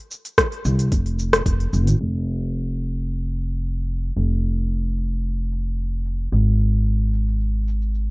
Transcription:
0.11 cabasa
0.25 open hi-hat, cabasa
0.38 kick, cross-stick, open hi-hat, cabasa
0.52 open hi-hat
0.65 C2, cabasa
0.79 open hi-hat, cabasa
0.92 F1, kick, open hi-hat, cabasa
1.06 open hi-hat
1.19 cabasa
1.33 cross-stick, open hi-hat, cabasa
1.46 F1, kick, open hi-hat, cabasa
1.60 open hi-hat
1.73 F1, cabasa
1.87 G#1, open hi-hat, cabasa
2.00 F1
2.27 cabasa
2.55 cabasa
2.82 cabasa
2.96 cabasa
3.09 cabasa
3.35 cabasa
3.50 cabasa
3.63 cabasa
3.89 cabasa
4.04 cabasa
4.16 F1
4.44 cabasa
4.58 cabasa
4.71 cabasa
4.98 cabasa
5.12 cabasa
5.25 cabasa
5.52 cabasa
5.66 cabasa
5.79 cabasa
6.05 cabasa
6.20 cabasa
6.32 G#1, cabasa
6.59 cabasa
6.74 cabasa
6.86 cabasa
7.13 cabasa
7.28 cabasa
7.41 cabasa
7.68 cabasa
7.82 cabasa
7.95 cabasa

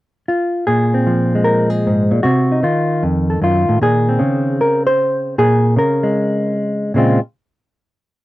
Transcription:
0.28 F4
0.67 A#2 G#4
0.94 C4
1.07 F3
1.35 G#3
1.44 A#4
1.70 G#4
1.87 G#2
2.11 A#2
2.23 C3 F#4
2.52 D#4
2.63 D#3 F4
3.03 F2
3.30 A4
3.42 F#2 F4
3.69 A2
3.81 A#2 G#4
4.09 C4
4.19 C#3
4.61 A#4
4.87 C5
5.38 A#2 G#4
5.76 C#3 A#4
6.03 G#3
6.94 A#2 C#3 G#3 C4 F4

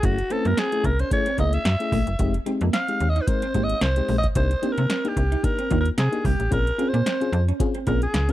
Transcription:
0.03 F#1 A3 C#4 E4 F#4 G#4, kick, closed hi-hat
0.18 muted clean electric guitar stroke, closed hi-hat
0.30 A3 C4 C#4 E4 A4 B4, closed hi-hat
0.45 F#2 A#3 A#4, closed hi-hat
0.57 C4 G#4, snare, closed hi-hat
0.72 A3 C#4 E4 G#4, closed hi-hat
0.84 C2 A#4, muted clean electric guitar stroke, kick, closed hi-hat
0.99 C#4 C5, closed hi-hat
1.11 A3 C#4 E4 G#4 C#5, muted clean electric guitar stroke, kick, closed hi-hat
1.26 C4, closed hi-hat
1.38 C#2 A3 A#3 C#4 E4 G#4 D#5, kick, closed hi-hat
1.53 E5, closed hi-hat
1.65 F#2, snare, closed hi-hat
1.80 A3 C#4 E4 G#4, closed hi-hat
1.92 A#1 A3, kick, open hi-hat
2.07 F#1, closed hi-hat
2.19 F1 G#3 C4 D#4 G4, kick, closed hi-hat
2.34 muted clean electric guitar stroke, closed hi-hat
2.46 G#3 C4 D#4 G4, closed hi-hat
2.61 F2 A#3, closed hi-hat
2.73 C4 F5, snare, closed hi-hat
2.88 G#3 C4 D#4 G4, closed hi-hat
3.00 D#2, muted clean electric guitar stroke, closed hi-hat
3.10 D#5
3.16 D#4, closed hi-hat
3.21 B4
3.27 G#3 C4 D#4 A#4 C5, muted clean electric guitar stroke, kick, closed hi-hat
3.42 C4, closed hi-hat
3.54 G#1 G#3 A#3 C4 D#4 G4, kick, closed hi-hat
3.63 D#5
3.69 closed hi-hat
3.81 C2 C5, snare, closed hi-hat
3.96 G#3 C4 D#4 G4, closed hi-hat
4.08 A#1 G#3, open hi-hat
4.18 D#5
4.23 kick, closed hi-hat
4.35 C2 A#3 D4 D#4 G4 C5, kick, closed hi-hat
4.51 muted clean electric guitar stroke, closed hi-hat
4.62 A#3 C4 D4 D#4 G4, closed hi-hat
4.73 A#4
4.78 C3 A#3, closed hi-hat
4.90 C4, snare, closed hi-hat
5.04 A#3 D4 D#4 G4, closed hi-hat
5.17 C2, muted clean electric guitar stroke, kick, closed hi-hat
5.32 D#4, closed hi-hat
5.43 A#3 D4 D#4 G4 A#4, muted clean electric guitar stroke, kick, closed hi-hat
5.59 C4, closed hi-hat
5.70 D#2 A#3 D4 D#4 F4, kick, closed hi-hat
5.81 A#4
5.85 closed hi-hat
5.98 C3 G#4, snare, closed hi-hat
6.12 A#3 D4 D#4 G4, closed hi-hat
6.25 C2 G3 G4, kick, open hi-hat
6.40 A1, closed hi-hat
6.51 A#1 C4 C#4 F4 G#4 A#4, kick, closed hi-hat
6.67 muted clean electric guitar stroke, closed hi-hat
6.78 C4 C#4 F4 G#4, closed hi-hat
6.89 C5
6.94 A#2 A#3, closed hi-hat
7.06 C4, snare, closed hi-hat
7.21 C4 C#4 F4 G#4, closed hi-hat
7.32 F2, muted clean electric guitar stroke, closed hi-hat
7.49 C#4, closed hi-hat
7.60 C4 C#4 F4 G#4, muted clean electric guitar stroke, kick, closed hi-hat
7.74 C4, closed hi-hat
7.87 A#1 A#3 C4 C#4 F4 G#4 A#4, kick, closed hi-hat
8.02 G#4, closed hi-hat
8.14 C#2, snare, closed hi-hat
8.28 C4 C#4 F4 G#4, closed hi-hat

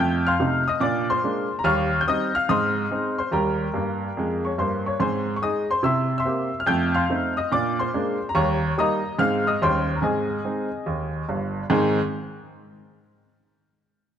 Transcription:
Already playing: F2 G6
0.00 A3 G5
0.27 F5 C6 F6
0.40 C3 A3 D#4
0.68 D#5 D#6
0.80 A#2 D4 D5 D6
1.10 C5 C6
1.24 G#3 A#3 D4
1.59 A#5
1.64 D#2 G3 F5 C#6 F6
2.01 G6
2.07 G3 C4 D#4 D#5 D#6
2.35 F5 F6
2.49 G#2 C4 D#5 C6 D#6
2.91 G#3 C4 D#4
3.18 C5 C6
3.31 D#2 G3 A#4 G5 A#5
3.74 G2 A#3
4.17 F2 G#3
4.45 C#5 C#6
4.58 G2 A#3 C5 C6
4.86 C#5 C#6
5.00 G#2 C4 C5 G#5 C6
5.36 C#6
5.42 G#3 D#4 G#4 D#5 D#6
5.71 C5 C6
5.83 C3 E4 E5 C6 E6
6.18 E5 C6 E6
6.25 A#3 C4 G4
6.60 F6
6.66 F2 A3 G5 G6
6.95 F5 C6 F6
7.10 A3 C4 D#4
7.37 D#5 D#6
7.52 A#2 D4 D5 D6
7.79 C5 C6
7.94 G#3 A#3 D4
8.29 A#5
8.35 D#2 G3 C#5 A#5 C#6
8.78 G3 A#3 D#4 D#5 A#5 D#6
9.19 G#2 G#3 C4 D#4 F5 F6
9.47 D#5 D#6
9.62 D#2 G3 C#4 D#4 C5 G5 C6
9.96 A#5
10.02 G#2 C4 G#4 D#5 G#5
10.45 G#3 C4 D#4
10.86 D#2
11.29 G1 G2
11.70 G#2 D#3 C4 D#4 G#4 C5

